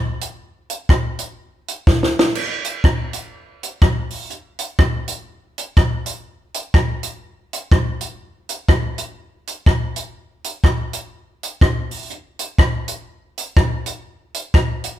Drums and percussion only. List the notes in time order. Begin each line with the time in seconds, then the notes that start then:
0.21 closed hi-hat
0.70 closed hi-hat
0.89 kick, cross-stick
1.19 closed hi-hat
1.68 closed hi-hat
1.87 kick, snare
2.03 snare
2.19 snare
2.35 crash
2.65 closed hi-hat
2.84 kick, cross-stick
3.13 closed hi-hat
3.63 closed hi-hat
3.82 kick, cross-stick
4.10 open hi-hat
4.30 hi-hat pedal
4.59 closed hi-hat
4.79 kick, cross-stick
5.08 closed hi-hat
5.58 closed hi-hat
5.77 kick, cross-stick
6.06 closed hi-hat
6.54 closed hi-hat
6.74 kick, cross-stick
7.03 closed hi-hat
7.53 closed hi-hat
7.72 kick, cross-stick
8.01 closed hi-hat
8.49 closed hi-hat
8.69 kick, cross-stick
8.98 closed hi-hat
9.47 closed hi-hat
9.66 kick, cross-stick
9.96 closed hi-hat
10.44 closed hi-hat
10.64 kick, cross-stick
10.93 closed hi-hat
11.43 closed hi-hat
11.61 kick, cross-stick
11.91 open hi-hat
12.10 hi-hat pedal
12.39 closed hi-hat
12.58 kick, cross-stick
12.88 closed hi-hat
13.38 closed hi-hat
13.57 kick, cross-stick
13.86 closed hi-hat
14.34 closed hi-hat
14.54 kick, cross-stick
14.84 closed hi-hat